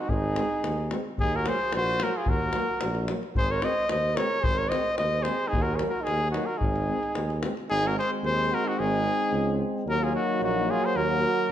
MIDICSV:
0, 0, Header, 1, 7, 480
1, 0, Start_track
1, 0, Tempo, 542986
1, 88, Time_signature, 2, 2, 24, 8
1, 10181, End_track
2, 0, Start_track
2, 0, Title_t, "Cornet"
2, 0, Program_c, 0, 56
2, 0, Note_on_c, 0, 66, 74
2, 82, Note_on_c, 0, 68, 91
2, 95, Note_off_c, 0, 66, 0
2, 805, Note_off_c, 0, 68, 0
2, 1064, Note_on_c, 0, 68, 99
2, 1202, Note_on_c, 0, 70, 82
2, 1215, Note_off_c, 0, 68, 0
2, 1305, Note_on_c, 0, 72, 100
2, 1318, Note_off_c, 0, 70, 0
2, 1536, Note_off_c, 0, 72, 0
2, 1552, Note_on_c, 0, 72, 108
2, 1795, Note_on_c, 0, 70, 84
2, 1808, Note_off_c, 0, 72, 0
2, 1916, Note_on_c, 0, 68, 73
2, 1929, Note_off_c, 0, 70, 0
2, 2027, Note_on_c, 0, 70, 89
2, 2040, Note_off_c, 0, 68, 0
2, 2737, Note_off_c, 0, 70, 0
2, 2984, Note_on_c, 0, 72, 96
2, 3104, Note_on_c, 0, 73, 77
2, 3117, Note_off_c, 0, 72, 0
2, 3220, Note_on_c, 0, 75, 90
2, 3233, Note_off_c, 0, 73, 0
2, 3448, Note_off_c, 0, 75, 0
2, 3453, Note_on_c, 0, 75, 83
2, 3685, Note_on_c, 0, 73, 89
2, 3698, Note_off_c, 0, 75, 0
2, 3922, Note_on_c, 0, 72, 101
2, 3935, Note_off_c, 0, 73, 0
2, 4048, Note_on_c, 0, 73, 86
2, 4061, Note_off_c, 0, 72, 0
2, 4148, Note_on_c, 0, 75, 88
2, 4161, Note_off_c, 0, 73, 0
2, 4398, Note_off_c, 0, 75, 0
2, 4406, Note_on_c, 0, 75, 91
2, 4622, Note_on_c, 0, 72, 88
2, 4635, Note_off_c, 0, 75, 0
2, 4844, Note_on_c, 0, 68, 88
2, 4857, Note_off_c, 0, 72, 0
2, 4970, Note_on_c, 0, 70, 79
2, 4983, Note_off_c, 0, 68, 0
2, 5090, Note_on_c, 0, 73, 61
2, 5103, Note_off_c, 0, 70, 0
2, 5107, Note_off_c, 0, 73, 0
2, 5208, Note_on_c, 0, 70, 71
2, 5335, Note_on_c, 0, 68, 95
2, 5349, Note_off_c, 0, 70, 0
2, 5572, Note_off_c, 0, 68, 0
2, 5577, Note_on_c, 0, 66, 71
2, 5708, Note_on_c, 0, 70, 68
2, 5722, Note_off_c, 0, 66, 0
2, 5813, Note_on_c, 0, 68, 79
2, 5826, Note_off_c, 0, 70, 0
2, 6550, Note_off_c, 0, 68, 0
2, 6810, Note_on_c, 0, 68, 109
2, 6957, Note_on_c, 0, 70, 85
2, 6971, Note_off_c, 0, 68, 0
2, 7056, Note_off_c, 0, 70, 0
2, 7061, Note_on_c, 0, 72, 89
2, 7166, Note_off_c, 0, 72, 0
2, 7297, Note_on_c, 0, 72, 98
2, 7552, Note_on_c, 0, 70, 86
2, 7565, Note_off_c, 0, 72, 0
2, 7671, Note_on_c, 0, 66, 75
2, 7685, Note_off_c, 0, 70, 0
2, 7769, Note_on_c, 0, 68, 95
2, 7782, Note_off_c, 0, 66, 0
2, 8487, Note_off_c, 0, 68, 0
2, 8746, Note_on_c, 0, 70, 101
2, 8869, Note_on_c, 0, 68, 72
2, 8883, Note_off_c, 0, 70, 0
2, 8968, Note_off_c, 0, 68, 0
2, 8973, Note_on_c, 0, 66, 80
2, 9192, Note_off_c, 0, 66, 0
2, 9224, Note_on_c, 0, 66, 81
2, 9463, Note_on_c, 0, 68, 84
2, 9476, Note_off_c, 0, 66, 0
2, 9593, Note_on_c, 0, 72, 86
2, 9607, Note_off_c, 0, 68, 0
2, 9691, Note_on_c, 0, 70, 100
2, 9704, Note_off_c, 0, 72, 0
2, 10181, Note_off_c, 0, 70, 0
2, 10181, End_track
3, 0, Start_track
3, 0, Title_t, "Flugelhorn"
3, 0, Program_c, 1, 56
3, 0, Note_on_c, 1, 63, 55
3, 98, Note_off_c, 1, 63, 0
3, 98, Note_on_c, 1, 63, 63
3, 813, Note_off_c, 1, 63, 0
3, 1071, Note_on_c, 1, 63, 68
3, 1202, Note_on_c, 1, 66, 72
3, 1215, Note_off_c, 1, 63, 0
3, 1323, Note_on_c, 1, 68, 70
3, 1336, Note_off_c, 1, 66, 0
3, 1545, Note_off_c, 1, 68, 0
3, 1552, Note_on_c, 1, 66, 71
3, 1789, Note_off_c, 1, 66, 0
3, 1789, Note_on_c, 1, 66, 75
3, 1922, Note_on_c, 1, 65, 64
3, 1935, Note_off_c, 1, 66, 0
3, 2025, Note_on_c, 1, 66, 63
3, 2038, Note_off_c, 1, 65, 0
3, 2736, Note_off_c, 1, 66, 0
3, 2983, Note_on_c, 1, 68, 69
3, 3093, Note_on_c, 1, 70, 77
3, 3106, Note_off_c, 1, 68, 0
3, 3191, Note_on_c, 1, 72, 71
3, 3205, Note_off_c, 1, 70, 0
3, 3419, Note_off_c, 1, 72, 0
3, 3424, Note_on_c, 1, 72, 63
3, 3663, Note_on_c, 1, 70, 78
3, 3676, Note_off_c, 1, 72, 0
3, 3898, Note_on_c, 1, 68, 68
3, 3911, Note_off_c, 1, 70, 0
3, 4014, Note_on_c, 1, 70, 81
3, 4027, Note_off_c, 1, 68, 0
3, 4132, Note_on_c, 1, 72, 71
3, 4145, Note_off_c, 1, 70, 0
3, 4360, Note_off_c, 1, 72, 0
3, 4365, Note_on_c, 1, 72, 67
3, 4598, Note_on_c, 1, 68, 80
3, 4611, Note_off_c, 1, 72, 0
3, 4840, Note_on_c, 1, 63, 70
3, 4854, Note_off_c, 1, 68, 0
3, 4955, Note_on_c, 1, 66, 71
3, 4969, Note_off_c, 1, 63, 0
3, 5073, Note_on_c, 1, 68, 67
3, 5086, Note_off_c, 1, 66, 0
3, 5088, Note_on_c, 1, 70, 62
3, 5101, Note_off_c, 1, 68, 0
3, 5221, Note_on_c, 1, 66, 63
3, 5235, Note_off_c, 1, 70, 0
3, 5312, Note_on_c, 1, 63, 56
3, 5325, Note_off_c, 1, 66, 0
3, 5566, Note_off_c, 1, 63, 0
3, 5572, Note_on_c, 1, 63, 63
3, 5693, Note_on_c, 1, 66, 55
3, 5707, Note_off_c, 1, 63, 0
3, 5821, Note_on_c, 1, 63, 49
3, 5834, Note_off_c, 1, 66, 0
3, 6554, Note_off_c, 1, 63, 0
3, 6801, Note_on_c, 1, 63, 80
3, 6948, Note_on_c, 1, 66, 81
3, 6961, Note_off_c, 1, 63, 0
3, 7044, Note_off_c, 1, 66, 0
3, 7049, Note_on_c, 1, 68, 69
3, 7157, Note_off_c, 1, 68, 0
3, 7291, Note_on_c, 1, 68, 65
3, 7528, Note_on_c, 1, 66, 78
3, 7541, Note_off_c, 1, 68, 0
3, 7648, Note_on_c, 1, 63, 66
3, 7661, Note_off_c, 1, 66, 0
3, 7758, Note_off_c, 1, 63, 0
3, 7758, Note_on_c, 1, 63, 61
3, 8481, Note_off_c, 1, 63, 0
3, 8743, Note_on_c, 1, 66, 66
3, 8849, Note_on_c, 1, 65, 71
3, 8862, Note_off_c, 1, 66, 0
3, 8963, Note_off_c, 1, 65, 0
3, 8973, Note_on_c, 1, 63, 52
3, 9192, Note_off_c, 1, 63, 0
3, 9208, Note_on_c, 1, 63, 69
3, 9450, Note_on_c, 1, 65, 88
3, 9463, Note_off_c, 1, 63, 0
3, 9579, Note_on_c, 1, 68, 74
3, 9592, Note_off_c, 1, 65, 0
3, 9700, Note_on_c, 1, 66, 71
3, 9713, Note_off_c, 1, 68, 0
3, 10181, Note_off_c, 1, 66, 0
3, 10181, End_track
4, 0, Start_track
4, 0, Title_t, "Euphonium"
4, 0, Program_c, 2, 58
4, 326, Note_on_c, 2, 60, 52
4, 422, Note_off_c, 2, 60, 0
4, 797, Note_on_c, 2, 60, 46
4, 895, Note_off_c, 2, 60, 0
4, 1280, Note_on_c, 2, 58, 58
4, 1377, Note_off_c, 2, 58, 0
4, 1776, Note_on_c, 2, 58, 57
4, 1870, Note_off_c, 2, 58, 0
4, 2256, Note_on_c, 2, 58, 57
4, 2350, Note_off_c, 2, 58, 0
4, 2754, Note_on_c, 2, 58, 42
4, 2845, Note_off_c, 2, 58, 0
4, 3216, Note_on_c, 2, 60, 50
4, 3310, Note_off_c, 2, 60, 0
4, 3693, Note_on_c, 2, 60, 52
4, 3788, Note_off_c, 2, 60, 0
4, 4165, Note_on_c, 2, 60, 62
4, 4261, Note_off_c, 2, 60, 0
4, 4652, Note_on_c, 2, 60, 52
4, 4747, Note_off_c, 2, 60, 0
4, 5137, Note_on_c, 2, 58, 56
4, 5231, Note_off_c, 2, 58, 0
4, 5620, Note_on_c, 2, 58, 56
4, 5713, Note_off_c, 2, 58, 0
4, 6089, Note_on_c, 2, 60, 49
4, 6185, Note_off_c, 2, 60, 0
4, 6569, Note_on_c, 2, 60, 48
4, 6664, Note_off_c, 2, 60, 0
4, 6806, Note_on_c, 2, 60, 55
4, 8689, Note_off_c, 2, 60, 0
4, 8721, Note_on_c, 2, 58, 87
4, 10181, Note_off_c, 2, 58, 0
4, 10181, End_track
5, 0, Start_track
5, 0, Title_t, "Euphonium"
5, 0, Program_c, 3, 58
5, 340, Note_on_c, 3, 56, 49
5, 433, Note_off_c, 3, 56, 0
5, 810, Note_on_c, 3, 56, 56
5, 906, Note_off_c, 3, 56, 0
5, 1288, Note_on_c, 3, 54, 55
5, 1384, Note_off_c, 3, 54, 0
5, 1770, Note_on_c, 3, 54, 52
5, 1866, Note_off_c, 3, 54, 0
5, 2244, Note_on_c, 3, 54, 44
5, 2341, Note_off_c, 3, 54, 0
5, 2732, Note_on_c, 3, 54, 51
5, 2827, Note_off_c, 3, 54, 0
5, 3199, Note_on_c, 3, 56, 39
5, 3297, Note_off_c, 3, 56, 0
5, 3678, Note_on_c, 3, 56, 52
5, 3776, Note_off_c, 3, 56, 0
5, 4173, Note_on_c, 3, 56, 52
5, 4268, Note_off_c, 3, 56, 0
5, 4635, Note_on_c, 3, 56, 45
5, 4734, Note_off_c, 3, 56, 0
5, 5115, Note_on_c, 3, 54, 49
5, 5214, Note_off_c, 3, 54, 0
5, 5605, Note_on_c, 3, 54, 52
5, 5702, Note_off_c, 3, 54, 0
5, 6090, Note_on_c, 3, 56, 46
5, 6185, Note_off_c, 3, 56, 0
5, 6568, Note_on_c, 3, 56, 43
5, 6663, Note_off_c, 3, 56, 0
5, 6817, Note_on_c, 3, 56, 59
5, 8728, Note_on_c, 3, 54, 71
5, 8741, Note_off_c, 3, 56, 0
5, 10181, Note_off_c, 3, 54, 0
5, 10181, End_track
6, 0, Start_track
6, 0, Title_t, "Tuba"
6, 0, Program_c, 4, 58
6, 77, Note_on_c, 4, 32, 90
6, 344, Note_off_c, 4, 32, 0
6, 559, Note_on_c, 4, 39, 74
6, 825, Note_off_c, 4, 39, 0
6, 1044, Note_on_c, 4, 39, 76
6, 1309, Note_off_c, 4, 39, 0
6, 1517, Note_on_c, 4, 34, 79
6, 1784, Note_off_c, 4, 34, 0
6, 2002, Note_on_c, 4, 39, 82
6, 2267, Note_off_c, 4, 39, 0
6, 2483, Note_on_c, 4, 34, 91
6, 2748, Note_off_c, 4, 34, 0
6, 2963, Note_on_c, 4, 32, 79
6, 3228, Note_off_c, 4, 32, 0
6, 3442, Note_on_c, 4, 39, 71
6, 3708, Note_off_c, 4, 39, 0
6, 3940, Note_on_c, 4, 32, 80
6, 4200, Note_off_c, 4, 32, 0
6, 4414, Note_on_c, 4, 39, 75
6, 4676, Note_off_c, 4, 39, 0
6, 4896, Note_on_c, 4, 39, 99
6, 5158, Note_off_c, 4, 39, 0
6, 5371, Note_on_c, 4, 39, 75
6, 5634, Note_off_c, 4, 39, 0
6, 5848, Note_on_c, 4, 32, 89
6, 6112, Note_off_c, 4, 32, 0
6, 6332, Note_on_c, 4, 39, 75
6, 6594, Note_off_c, 4, 39, 0
6, 6809, Note_on_c, 4, 32, 90
6, 7072, Note_off_c, 4, 32, 0
6, 7274, Note_on_c, 4, 39, 84
6, 7541, Note_off_c, 4, 39, 0
6, 7770, Note_on_c, 4, 32, 95
6, 8033, Note_off_c, 4, 32, 0
6, 8238, Note_on_c, 4, 37, 96
6, 8504, Note_off_c, 4, 37, 0
6, 8713, Note_on_c, 4, 39, 85
6, 8980, Note_off_c, 4, 39, 0
6, 9199, Note_on_c, 4, 34, 80
6, 9464, Note_off_c, 4, 34, 0
6, 9683, Note_on_c, 4, 39, 88
6, 9947, Note_off_c, 4, 39, 0
6, 10181, End_track
7, 0, Start_track
7, 0, Title_t, "Davul"
7, 80, Note_on_c, 9, 43, 68
7, 168, Note_off_c, 9, 43, 0
7, 321, Note_on_c, 9, 37, 62
7, 409, Note_off_c, 9, 37, 0
7, 567, Note_on_c, 9, 37, 60
7, 655, Note_off_c, 9, 37, 0
7, 805, Note_on_c, 9, 37, 63
7, 893, Note_off_c, 9, 37, 0
7, 1044, Note_on_c, 9, 43, 64
7, 1133, Note_off_c, 9, 43, 0
7, 1288, Note_on_c, 9, 37, 68
7, 1376, Note_off_c, 9, 37, 0
7, 1525, Note_on_c, 9, 37, 67
7, 1613, Note_off_c, 9, 37, 0
7, 1766, Note_on_c, 9, 37, 74
7, 1854, Note_off_c, 9, 37, 0
7, 1999, Note_on_c, 9, 43, 81
7, 2088, Note_off_c, 9, 43, 0
7, 2234, Note_on_c, 9, 37, 64
7, 2323, Note_off_c, 9, 37, 0
7, 2481, Note_on_c, 9, 37, 77
7, 2569, Note_off_c, 9, 37, 0
7, 2606, Note_on_c, 9, 37, 27
7, 2695, Note_off_c, 9, 37, 0
7, 2723, Note_on_c, 9, 37, 68
7, 2812, Note_off_c, 9, 37, 0
7, 2855, Note_on_c, 9, 37, 23
7, 2944, Note_off_c, 9, 37, 0
7, 2964, Note_on_c, 9, 43, 77
7, 3052, Note_off_c, 9, 43, 0
7, 3202, Note_on_c, 9, 37, 65
7, 3291, Note_off_c, 9, 37, 0
7, 3443, Note_on_c, 9, 37, 68
7, 3531, Note_off_c, 9, 37, 0
7, 3687, Note_on_c, 9, 37, 76
7, 3776, Note_off_c, 9, 37, 0
7, 3922, Note_on_c, 9, 43, 90
7, 4010, Note_off_c, 9, 43, 0
7, 4170, Note_on_c, 9, 37, 71
7, 4258, Note_off_c, 9, 37, 0
7, 4402, Note_on_c, 9, 37, 62
7, 4490, Note_off_c, 9, 37, 0
7, 4641, Note_on_c, 9, 37, 59
7, 4729, Note_off_c, 9, 37, 0
7, 4888, Note_on_c, 9, 43, 74
7, 4977, Note_off_c, 9, 43, 0
7, 5121, Note_on_c, 9, 37, 62
7, 5209, Note_off_c, 9, 37, 0
7, 5364, Note_on_c, 9, 37, 49
7, 5453, Note_off_c, 9, 37, 0
7, 5608, Note_on_c, 9, 37, 57
7, 5696, Note_off_c, 9, 37, 0
7, 5843, Note_on_c, 9, 43, 70
7, 5931, Note_off_c, 9, 43, 0
7, 5973, Note_on_c, 9, 37, 23
7, 6061, Note_off_c, 9, 37, 0
7, 6214, Note_on_c, 9, 37, 22
7, 6303, Note_off_c, 9, 37, 0
7, 6324, Note_on_c, 9, 37, 62
7, 6412, Note_off_c, 9, 37, 0
7, 6456, Note_on_c, 9, 37, 25
7, 6544, Note_off_c, 9, 37, 0
7, 6565, Note_on_c, 9, 37, 69
7, 6654, Note_off_c, 9, 37, 0
7, 6694, Note_on_c, 9, 37, 27
7, 6782, Note_off_c, 9, 37, 0
7, 10181, End_track
0, 0, End_of_file